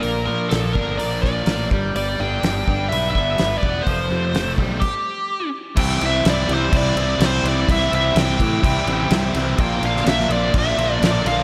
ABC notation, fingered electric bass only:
X:1
M:4/4
L:1/8
Q:1/4=126
K:C
V:1 name="Fingered electric bass" clef=bass
_B,,, _B,, B,,, G,,, B,,,2 A,,, G,,, | G,,, G,,, G,,, G,,, B,,, G,,, G,,, E,,, | F,,, F,, F,,, B,,, z4 | C,, C,, C,, C,, C,, C,, C,, C,, |
C,, C,, C,, A,, C,, A,,, C,, C,, | _B,,, B,,, B,,, B,,, B,,, B,,, B,,, B,,, |]